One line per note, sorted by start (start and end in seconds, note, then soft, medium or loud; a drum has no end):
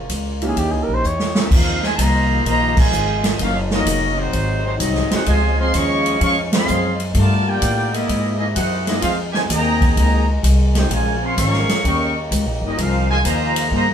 0.00 1.34 C#3 medium
0.00 0.56 G#3 medium
0.00 0.56 A#3 medium
0.00 0.56 F4 medium
0.09 0.55 C#2 medium
0.09 kick soft
0.09 hi-hat pedal medium
0.09 ride medium
0.41 1.01 E3 medium
0.41 1.01 A#3 medium
0.41 1.01 C#4 medium
0.41 1.01 D#4 medium
0.41 1.02 G4 medium
0.41 ride medium
0.48 0.60 G#4 medium
0.56 0.72 D#2 medium
0.56 1.34 E3 medium
0.56 1.34 G3 medium
0.56 1.34 D#4 medium
0.56 0.73 G4 medium
0.56 kick soft
0.56 ride medium
0.71 0.88 C#2 medium
0.71 0.85 G#4 medium
0.83 0.96 A#4 medium
0.88 1.03 A#1 medium
0.94 1.08 C5 medium
1.04 1.50 E2 medium
1.04 1.45 C#5 medium
1.04 hi-hat pedal medium
1.19 snare medium
1.35 snare medium
1.39 1.52 A#3 medium
1.39 1.52 C#4 medium
1.39 1.52 E4 medium
1.39 1.53 G4 medium
1.39 1.53 A#4 medium
1.39 1.52 E5 medium
1.51 1.97 D#2 loud
1.51 3.38 C3 medium
1.51 1.82 F3 medium
1.51 5.24 G#3 medium
1.51 3.38 A#3 medium
1.51 1.83 C4 medium
1.51 4.31 D#4 medium
1.51 1.85 D#4 medium
1.51 1.84 F4 medium
1.51 1.85 A#4 medium
1.51 1.84 C5 medium
1.51 1.85 F5 loud
1.51 kick medium
1.51 crash medium
1.83 1.88 D#3 medium
1.83 1.88 F3 medium
1.83 1.88 G#3 medium
1.83 1.89 F4 medium
1.83 1.89 C5 loud
1.83 1.89 D#5 medium
1.83 1.89 G#5 loud
1.83 snare soft
1.95 2.44 C2 medium
1.95 2.45 D#3 medium
1.95 2.45 F3 medium
1.95 2.45 A#3 medium
1.95 1.99 A5 medium
1.95 kick soft
1.95 hi-hat pedal medium
1.95 ride medium
2.00 2.46 F4 loud
2.00 2.46 C5 loud
2.00 2.46 D#5 medium
2.00 2.46 A#5 loud
2.45 2.91 A#1 medium
2.45 2.75 D#3 medium
2.45 2.75 F3 medium
2.45 2.75 A#3 loud
2.45 2.76 F4 medium
2.45 2.76 C5 medium
2.45 2.76 D#5 loud
2.45 2.76 A#5 loud
2.45 kick soft
2.45 ride medium
2.77 3.24 D#3 medium
2.77 3.24 F3 medium
2.77 3.24 G#3 medium
2.77 3.25 F4 medium
2.77 3.25 C5 medium
2.77 3.25 D#5 medium
2.77 3.25 G#5 medium
2.77 kick loud
2.77 crash medium
2.92 3.38 G#1 medium
2.92 hi-hat pedal medium
3.24 snare medium
3.24 ride medium
3.37 3.85 F#1 loud
3.37 4.32 C#3 medium
3.37 5.25 F#3 medium
3.37 3.54 A#3 medium
3.37 3.54 C#4 medium
3.37 3.54 F4 medium
3.37 3.55 F#4 medium
3.37 kick soft
3.37 ride medium
3.41 3.55 C#4 medium
3.41 3.55 A#4 medium
3.41 3.55 F5 medium
3.71 4.15 F#3 medium
3.71 4.15 A#3 medium
3.71 4.16 C#4 medium
3.71 4.15 D#4 medium
3.71 4.16 F#4 medium
3.71 4.16 A#4 medium
3.71 4.16 D#5 loud
3.71 snare medium
3.86 4.32 F1 loud
3.86 kick soft
3.86 hi-hat pedal medium
3.86 ride medium
4.16 4.63 D#3 medium
4.16 4.63 F#3 medium
4.16 4.65 G#3 medium
4.16 4.63 C4 medium
4.16 4.64 D#4 medium
4.16 4.65 F#4 medium
4.16 4.64 C5 loud
4.32 4.79 G#1 medium
4.32 5.26 C3 medium
4.32 7.12 D#4 medium
4.32 kick soft
4.32 ride medium
4.64 4.71 D#3 medium
4.64 4.71 F#3 medium
4.64 4.73 G#3 medium
4.64 4.71 C4 medium
4.64 4.72 D#4 medium
4.64 4.73 F#4 medium
4.64 4.72 C5 medium
4.78 4.98 C2 medium
4.78 5.09 F#3 medium
4.78 5.09 C4 medium
4.78 5.09 D#4 medium
4.78 5.09 F#4 medium
4.78 5.10 G#4 medium
4.78 5.09 D#5 medium
4.78 kick soft
4.78 hi-hat pedal medium
4.78 ride medium
4.95 5.11 G#1 medium
4.95 snare soft
5.11 5.26 F#1 medium
5.11 5.26 C4 medium
5.11 5.26 D#4 medium
5.11 5.27 D#4 medium
5.11 5.26 F#4 medium
5.11 5.26 G#4 medium
5.11 5.26 C5 medium
5.11 5.26 F#5 medium
5.11 snare medium
5.11 ride medium
5.26 5.73 C#2 medium
5.26 5.56 C3 medium
5.26 7.14 C#3 medium
5.26 5.56 F3 medium
5.26 7.13 F3 medium
5.26 5.56 G#3 loud
5.26 7.13 G#3 medium
5.26 5.57 F4 medium
5.26 5.57 C5 loud
5.26 5.57 D#5 loud
5.26 5.57 G#5 loud
5.26 kick soft
5.26 ride medium
5.59 5.72 F3 loud
5.59 5.72 G#3 loud
5.59 5.73 C4 medium
5.59 5.74 G#4 medium
5.59 5.74 D#5 loud
5.59 5.74 F5 medium
5.59 5.74 C6 loud
5.73 6.20 D#2 loud
5.73 6.19 F3 medium
5.73 6.19 G#3 loud
5.73 6.19 C#4 medium
5.73 6.22 G#4 medium
5.73 6.22 D#5 loud
5.73 6.22 F5 loud
5.73 6.22 C#6 loud
5.73 kick soft
5.73 hi-hat pedal medium
5.73 ride medium
6.06 ride medium
6.20 6.67 F2 medium
6.20 6.34 F3 medium
6.20 6.35 G#3 loud
6.20 6.34 C#4 loud
6.20 6.37 G#4 medium
6.20 6.37 D#5 medium
6.20 6.37 C#6 loud
6.20 kick soft
6.20 ride medium
6.24 6.37 F5 loud
6.52 6.96 F3 medium
6.52 6.96 G#3 medium
6.52 6.96 C4 medium
6.52 6.98 G#4 medium
6.52 6.98 D#5 medium
6.52 6.98 C6 loud
6.52 snare medium
6.52 ride medium
6.56 6.98 F5 medium
6.67 7.14 F#2 loud
6.67 hi-hat pedal medium
7.00 ride medium
7.13 7.61 G2 loud
7.13 8.08 D3 medium
7.13 8.08 G3 medium
7.13 7.44 A3 medium
7.13 8.08 F4 medium
7.13 8.08 A#4 medium
7.13 kick soft
7.13 ride medium
7.18 7.47 F4 medium
7.18 7.47 A#4 medium
7.18 7.46 D5 medium
7.18 7.46 A5 loud
7.46 7.91 A#3 medium
7.46 7.94 D4 medium
7.46 7.94 F4 medium
7.46 7.93 G4 medium
7.46 7.95 A#4 medium
7.46 7.94 D5 loud
7.46 7.95 G5 loud
7.62 8.08 A2 loud
7.62 kick soft
7.62 hi-hat pedal medium
7.62 ride medium
7.91 8.36 G#3 medium
7.91 8.37 A#3 medium
7.91 8.37 E4 medium
7.91 8.37 G#4 medium
7.91 8.37 D#5 loud
7.91 ride medium
8.08 8.55 G#2 medium
8.08 9.02 C3 medium
8.08 11.80 G#3 medium
8.08 13.94 A#3 medium
8.08 9.01 E4 medium
8.08 kick soft
8.08 ride medium
8.37 8.46 G#3 medium
8.37 8.45 A#3 medium
8.37 8.46 A#3 medium
8.37 8.45 D#4 medium
8.37 8.46 E4 medium
8.37 8.46 G#4 medium
8.37 8.45 D#5 medium
8.54 9.02 F#2 loud
8.54 8.85 D#4 medium
8.54 8.84 F#4 medium
8.54 8.84 G#4 medium
8.54 8.84 C5 medium
8.54 8.85 F#5 loud
8.54 kick soft
8.54 hi-hat pedal medium
8.54 ride medium
8.86 8.99 G#3 medium
8.86 9.01 A#3 medium
8.86 9.01 D#4 medium
8.86 9.01 E4 medium
8.86 9.00 G#4 medium
8.86 9.01 D#5 medium
8.86 snare soft
8.86 ride medium
9.01 9.48 F2 medium
9.01 10.88 D#3 medium
9.01 9.15 G#3 medium
9.01 9.15 C4 medium
9.01 9.16 D#4 medium
9.01 9.16 F4 medium
9.01 9.15 G#4 medium
9.01 10.88 G#4 medium
9.01 9.16 C5 medium
9.01 9.15 F5 loud
9.01 kick soft
9.01 ride medium
9.32 9.42 C3 medium
9.32 9.42 D#3 medium
9.32 9.42 G#3 medium
9.32 9.40 D#4 medium
9.32 9.40 G4 medium
9.32 9.40 C5 medium
9.32 9.40 G#5 loud
9.32 snare soft
9.49 9.95 D#2 loud
9.49 9.93 C3 medium
9.49 9.93 D#3 medium
9.49 9.93 A#3 loud
9.49 9.94 G#4 loud
9.49 9.94 D#5 loud
9.49 9.94 G5 medium
9.49 9.94 A#5 loud
9.49 kick soft
9.49 hi-hat pedal medium
9.49 ride medium
9.81 kick medium
9.81 ride medium
9.95 10.42 C#2 medium
9.95 10.25 C3 medium
9.95 10.26 D#3 medium
9.95 10.26 A#3 medium
9.95 10.26 G#4 medium
9.95 10.26 D#5 medium
9.95 10.26 G5 medium
9.95 10.26 A#5 loud
9.95 kick soft
9.95 ride medium
10.43 10.89 C2 medium
10.43 kick soft
10.43 hi-hat pedal medium
10.43 ride medium
10.75 10.90 C4 medium
10.75 10.90 D#4 medium
10.75 10.90 G4 medium
10.75 10.90 G#4 medium
10.75 10.91 C5 medium
10.75 10.90 G5 medium
10.75 snare medium
10.75 ride medium
10.90 11.36 A#1 loud
10.90 12.76 C#3 medium
10.90 11.20 C#3 medium
10.90 11.20 F3 medium
10.90 11.20 G#3 medium
10.90 11.83 F4 medium
10.90 11.21 F4 medium
10.90 11.21 A#4 medium
10.90 11.21 C#5 medium
10.90 11.21 G#5 medium
10.90 kick soft
10.90 ride medium
11.21 11.37 C4 medium
11.21 11.38 G#4 loud
11.21 11.38 C#5 medium
11.21 11.36 F5 medium
11.21 11.38 C6 loud
11.37 11.67 G#1 loud
11.37 11.81 F3 medium
11.37 11.81 G#3 medium
11.37 11.80 C#4 medium
11.37 11.81 A#4 loud
11.37 11.81 F5 loud
11.37 11.81 G#5 medium
11.37 11.81 C#6 loud
11.37 kick soft
11.37 hi-hat pedal medium
11.37 ride medium
11.53 snare soft
11.69 muted upright bass stroke soft
11.69 snare medium
11.69 ride medium
11.83 12.30 D#2 medium
11.83 12.14 G3 medium
11.83 12.77 G3 medium
11.83 12.13 A#3 medium
11.83 12.13 C#4 medium
11.83 12.77 D#4 medium
11.83 12.14 A#4 medium
11.83 12.15 D#5 medium
11.83 12.14 G5 medium
11.83 12.14 C#6 loud
11.83 kick soft
11.83 ride medium
12.31 12.45 C#2 loud
12.31 kick soft
12.31 hi-hat pedal medium
12.31 ride medium
12.45 12.60 A#1 medium
12.61 12.76 G1 medium
12.61 12.78 G3 medium
12.61 12.78 A#3 medium
12.61 12.78 D#4 medium
12.66 12.79 C#4 medium
12.66 12.79 G4 medium
12.66 12.79 A#4 medium
12.66 12.79 D#5 loud
12.78 13.23 C2 loud
12.78 13.94 C3 medium
12.78 13.08 F3 medium
12.78 13.10 C4 medium
12.78 13.11 D#4 medium
12.78 13.94 F4 loud
12.78 13.10 F4 loud
12.78 13.94 G#4 medium
12.78 13.11 A#4 medium
12.78 13.10 C5 medium
12.78 13.11 F5 loud
12.78 kick soft
12.78 ride medium
13.10 13.17 D#3 medium
13.10 13.16 F3 medium
13.10 13.16 G#3 medium
13.10 13.17 F4 loud
13.10 13.17 C5 medium
13.10 13.17 D#5 medium
13.10 13.17 G#5 loud
13.24 13.70 D#2 loud
13.24 13.68 D#3 medium
13.24 13.68 F3 medium
13.24 13.68 A#3 medium
13.24 13.69 F4 medium
13.24 13.69 C5 loud
13.24 13.69 D#5 loud
13.24 13.69 A#5 loud
13.24 kick soft
13.24 hi-hat pedal medium
13.24 ride medium
13.56 ride medium
13.71 13.94 G2 loud
13.71 13.86 D#3 medium
13.71 13.86 F3 medium
13.71 13.86 A#3 medium
13.71 13.88 F4 medium
13.71 13.88 C5 loud
13.71 13.87 D#5 medium
13.71 13.88 A#5 loud
13.71 kick soft